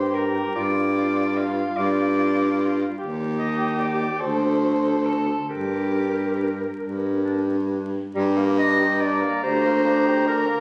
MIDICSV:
0, 0, Header, 1, 5, 480
1, 0, Start_track
1, 0, Key_signature, -2, "minor"
1, 0, Tempo, 815217
1, 326, Time_signature, 6, 3, 24, 8
1, 2724, Tempo, 882353
1, 4644, Tempo, 845070
1, 6033, End_track
2, 0, Start_track
2, 0, Title_t, "Soprano saxophone"
2, 0, Program_c, 0, 64
2, 0, Note_on_c, 0, 72, 81
2, 82, Note_on_c, 0, 70, 78
2, 91, Note_off_c, 0, 72, 0
2, 323, Note_off_c, 0, 70, 0
2, 326, Note_on_c, 0, 74, 85
2, 809, Note_on_c, 0, 77, 88
2, 817, Note_off_c, 0, 74, 0
2, 1039, Note_on_c, 0, 74, 98
2, 1048, Note_off_c, 0, 77, 0
2, 1754, Note_off_c, 0, 74, 0
2, 1994, Note_on_c, 0, 75, 85
2, 2232, Note_on_c, 0, 74, 81
2, 2241, Note_off_c, 0, 75, 0
2, 2477, Note_on_c, 0, 72, 90
2, 2486, Note_off_c, 0, 74, 0
2, 2956, Note_on_c, 0, 69, 70
2, 2964, Note_off_c, 0, 72, 0
2, 3187, Note_off_c, 0, 69, 0
2, 3190, Note_on_c, 0, 67, 61
2, 3892, Note_off_c, 0, 67, 0
2, 4640, Note_on_c, 0, 82, 97
2, 6033, Note_off_c, 0, 82, 0
2, 6033, End_track
3, 0, Start_track
3, 0, Title_t, "Clarinet"
3, 0, Program_c, 1, 71
3, 94, Note_on_c, 1, 70, 45
3, 188, Note_off_c, 1, 70, 0
3, 333, Note_on_c, 1, 65, 53
3, 427, Note_off_c, 1, 65, 0
3, 571, Note_on_c, 1, 65, 53
3, 666, Note_off_c, 1, 65, 0
3, 812, Note_on_c, 1, 65, 54
3, 907, Note_off_c, 1, 65, 0
3, 1054, Note_on_c, 1, 65, 58
3, 1148, Note_off_c, 1, 65, 0
3, 1290, Note_on_c, 1, 65, 56
3, 1384, Note_off_c, 1, 65, 0
3, 1524, Note_on_c, 1, 65, 54
3, 1618, Note_off_c, 1, 65, 0
3, 1764, Note_on_c, 1, 67, 52
3, 1858, Note_off_c, 1, 67, 0
3, 1996, Note_on_c, 1, 67, 52
3, 2090, Note_off_c, 1, 67, 0
3, 2235, Note_on_c, 1, 67, 54
3, 2329, Note_off_c, 1, 67, 0
3, 2482, Note_on_c, 1, 66, 52
3, 2576, Note_off_c, 1, 66, 0
3, 2722, Note_on_c, 1, 66, 49
3, 2810, Note_off_c, 1, 66, 0
3, 2955, Note_on_c, 1, 66, 39
3, 3042, Note_off_c, 1, 66, 0
3, 3195, Note_on_c, 1, 62, 43
3, 3282, Note_off_c, 1, 62, 0
3, 3435, Note_on_c, 1, 62, 39
3, 3522, Note_off_c, 1, 62, 0
3, 3668, Note_on_c, 1, 62, 42
3, 3755, Note_off_c, 1, 62, 0
3, 3911, Note_on_c, 1, 62, 41
3, 3998, Note_off_c, 1, 62, 0
3, 4148, Note_on_c, 1, 62, 44
3, 4235, Note_off_c, 1, 62, 0
3, 4393, Note_on_c, 1, 62, 39
3, 4480, Note_off_c, 1, 62, 0
3, 4890, Note_on_c, 1, 75, 110
3, 5127, Note_on_c, 1, 74, 91
3, 5135, Note_off_c, 1, 75, 0
3, 5366, Note_off_c, 1, 74, 0
3, 5370, Note_on_c, 1, 72, 108
3, 5834, Note_off_c, 1, 72, 0
3, 5848, Note_on_c, 1, 70, 103
3, 6033, Note_off_c, 1, 70, 0
3, 6033, End_track
4, 0, Start_track
4, 0, Title_t, "Tenor saxophone"
4, 0, Program_c, 2, 66
4, 0, Note_on_c, 2, 67, 53
4, 301, Note_off_c, 2, 67, 0
4, 324, Note_on_c, 2, 65, 63
4, 1733, Note_off_c, 2, 65, 0
4, 1756, Note_on_c, 2, 67, 71
4, 2473, Note_on_c, 2, 69, 59
4, 2482, Note_off_c, 2, 67, 0
4, 3191, Note_off_c, 2, 69, 0
4, 3194, Note_on_c, 2, 70, 55
4, 4250, Note_off_c, 2, 70, 0
4, 4638, Note_on_c, 2, 55, 88
4, 4765, Note_on_c, 2, 58, 76
4, 4774, Note_off_c, 2, 55, 0
4, 4890, Note_on_c, 2, 62, 70
4, 4898, Note_off_c, 2, 58, 0
4, 5009, Note_on_c, 2, 67, 68
4, 5018, Note_off_c, 2, 62, 0
4, 5131, Note_on_c, 2, 62, 76
4, 5139, Note_off_c, 2, 67, 0
4, 5245, Note_on_c, 2, 58, 70
4, 5253, Note_off_c, 2, 62, 0
4, 5369, Note_on_c, 2, 55, 76
4, 5378, Note_off_c, 2, 58, 0
4, 5492, Note_on_c, 2, 58, 76
4, 5500, Note_off_c, 2, 55, 0
4, 5611, Note_on_c, 2, 62, 85
4, 5619, Note_off_c, 2, 58, 0
4, 5727, Note_on_c, 2, 67, 79
4, 5736, Note_off_c, 2, 62, 0
4, 5846, Note_on_c, 2, 62, 73
4, 5854, Note_off_c, 2, 67, 0
4, 5962, Note_on_c, 2, 58, 75
4, 5970, Note_off_c, 2, 62, 0
4, 6033, Note_off_c, 2, 58, 0
4, 6033, End_track
5, 0, Start_track
5, 0, Title_t, "Baritone saxophone"
5, 0, Program_c, 3, 67
5, 0, Note_on_c, 3, 43, 58
5, 241, Note_off_c, 3, 43, 0
5, 324, Note_on_c, 3, 43, 66
5, 960, Note_off_c, 3, 43, 0
5, 1047, Note_on_c, 3, 43, 78
5, 1674, Note_off_c, 3, 43, 0
5, 1761, Note_on_c, 3, 39, 62
5, 2393, Note_off_c, 3, 39, 0
5, 2479, Note_on_c, 3, 38, 68
5, 3112, Note_off_c, 3, 38, 0
5, 3196, Note_on_c, 3, 43, 50
5, 3824, Note_off_c, 3, 43, 0
5, 3908, Note_on_c, 3, 43, 54
5, 4555, Note_off_c, 3, 43, 0
5, 4641, Note_on_c, 3, 43, 94
5, 5251, Note_off_c, 3, 43, 0
5, 5376, Note_on_c, 3, 38, 96
5, 5964, Note_off_c, 3, 38, 0
5, 6033, End_track
0, 0, End_of_file